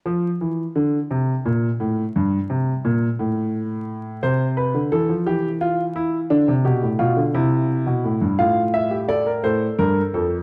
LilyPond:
<<
  \new Staff \with { instrumentName = "Grand piano" } { \time 6/8 \key f \major \tempo 4. = 58 r2. | r2. | c''8 b'8 a'8 g'8 f'8 e'8 | d'8 g'8 f'8 e'4. |
f'8. g'16 a'16 bes'16 a'4. | }
  \new Staff \with { instrumentName = "Grand piano" } { \clef bass \time 6/8 \key f \major << { f8 e8 d8 c8 bes,8 a,8 | g,8 c8 bes,8 a,4. | r2. | r2. |
f''8 e''8 d''8 c''8 bes'8 a'8 | } \\ { r2. | r2. | c8. d16 e16 f16 e4. | d16 c16 b,16 a,16 b,16 d16 c8. b,16 a,16 g,16 |
a,4. a,8 g,8 f,8 | } >> }
>>